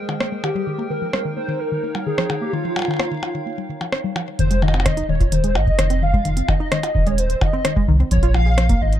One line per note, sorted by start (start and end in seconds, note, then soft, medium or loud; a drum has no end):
0.00 0.67 G#3 medium
0.00 0.67 G#4 medium
0.00 4.39 A#4 medium
0.00 0.67 C5 medium
0.00 4.39 G5 medium
0.09 0.15 D#3 medium
0.09 percussion blips soft
0.20 0.27 A#3 medium
0.20 cross-stick loud
0.32 0.42 G#3 medium
0.44 0.50 D#3 medium
0.44 0.87 G4 medium
0.44 percussion blips soft
0.55 0.61 G3 medium
0.67 0.78 D#3 medium
0.67 4.39 D#4 medium
0.78 0.85 A#3 loud
0.90 1.01 D#3 medium
0.90 1.33 A#4 loud
0.90 4.39 C#5 medium
1.02 1.08 F3 medium
1.13 1.20 G3 medium
1.13 cross-stick loud
1.25 1.35 D#3 loud
1.36 1.47 A#3 medium
1.36 1.61 C5 loud
1.48 1.54 D#3 medium
1.59 2.08 A#4 loud
1.71 1.78 D#3 medium
1.71 4.39 F5 medium
1.83 1.89 A#3 medium
1.95 2.05 G3 medium
1.95 percussion blips soft
2.06 2.13 D#3 medium
2.06 2.40 G#4 loud
2.18 2.24 F3 loud
2.18 cross-stick loud
2.30 2.41 D#3 medium
2.30 percussion blips soft
2.41 2.48 A#3 medium
2.41 2.54 G4 medium
2.53 2.64 D#3 medium
2.53 3.92 F4 loud
2.65 2.71 F3 medium
2.76 2.82 G3 medium
2.76 percussion blips medium
2.79 percussion blips soft
2.82 percussion blips soft
2.85 2.98 D#3 loud
2.85 percussion blips soft
2.91 percussion blips soft
2.94 percussion blips soft
2.97 cross-stick loud
2.97 percussion blips soft
3.00 3.10 A#3 medium
3.00 percussion blips soft
3.11 3.17 D#3 medium
3.23 percussion blips soft
3.35 3.41 D#3 medium
3.46 3.52 A#3 medium
3.58 3.68 G3 medium
3.69 3.80 D#3 medium
3.81 3.87 F3 medium
3.81 percussion blips soft
3.92 3.99 C#4 medium
3.92 cross-stick loud
4.04 4.10 G3 loud
4.16 4.22 F3 loud
4.16 percussion blips soft
4.39 5.03 F1 loud
4.39 4.50 D#3 medium
4.39 4.61 C5 loud
4.39 kick loud
4.39 closed hi-hat medium
4.51 4.57 G#3 loud
4.51 closed hi-hat medium
4.62 4.73 D#3 loud
4.62 5.11 D#5 loud
4.62 percussion blips soft
4.68 percussion blips soft
4.74 4.84 C4 medium
4.74 percussion blips soft
4.80 percussion blips soft
4.86 4.96 D#3 medium
4.86 kick loud
4.86 cross-stick loud
4.86 closed hi-hat medium
4.97 5.07 D#4 loud
4.97 closed hi-hat medium
5.09 5.57 D#1 medium
5.09 5.19 D#3 medium
5.09 5.34 C#5 medium
5.20 5.27 F4 medium
5.20 kick loud
5.20 closed hi-hat soft
5.32 5.43 D#3 medium
5.32 5.55 C5 loud
5.32 closed hi-hat medium
5.44 5.55 G#3 loud
5.44 closed hi-hat medium
5.55 5.71 G#1 medium
5.55 6.04 D#5 loud
5.55 percussion blips medium
5.67 kick loud
5.79 6.42 F1 medium
5.79 5.90 D#3 medium
5.79 cross-stick loud
5.79 closed hi-hat medium
5.90 6.01 C4 loud
5.90 closed hi-hat medium
6.02 6.13 D#3 medium
6.02 6.50 F5 loud
6.14 6.20 G#3 loud
6.14 kick loud
6.25 6.36 D#3 loud
6.25 closed hi-hat medium
6.37 6.47 C4 medium
6.37 closed hi-hat medium
6.48 6.59 D#3 medium
6.48 7.08 D#5 loud
6.48 kick loud
6.48 percussion blips medium
6.60 6.70 D#4 loud
6.72 6.82 D#3 medium
6.72 cross-stick loud
6.72 closed hi-hat medium
6.83 6.90 F4 medium
6.83 closed hi-hat medium
6.83 percussion blips soft
6.95 7.35 D#1 medium
6.95 7.06 D#3 medium
6.95 kick loud
7.07 7.18 G#3 loud
7.07 7.18 C#5 medium
7.07 closed hi-hat soft
7.18 7.43 C5 medium
7.18 closed hi-hat medium
7.30 closed hi-hat medium
7.41 7.52 D#3 medium
7.41 7.88 D#5 medium
7.41 kick loud
7.41 percussion blips medium
7.53 7.64 C4 loud
7.65 7.76 D#3 medium
7.65 cross-stick loud
7.65 closed hi-hat medium
7.76 7.82 G#3 loud
7.76 kick loud
7.88 8.03 C2 medium
7.88 7.99 D#3 loud
8.00 8.10 C4 medium
8.11 8.75 A#1 loud
8.11 8.21 F3 medium
8.11 8.33 C#5 loud
8.11 closed hi-hat medium
8.17 kick loud
8.23 8.33 F4 loud
8.23 closed hi-hat medium
8.34 8.45 F3 medium
8.34 8.83 F5 loud
8.34 percussion blips soft
8.46 8.52 G#4 medium
8.58 8.69 F3 medium
8.58 cross-stick loud
8.58 closed hi-hat medium
8.69 8.80 A#3 loud
8.69 kick loud
8.69 closed hi-hat medium
8.81 9.00 G#1 medium
8.81 9.00 D#5 loud
8.93 closed hi-hat soft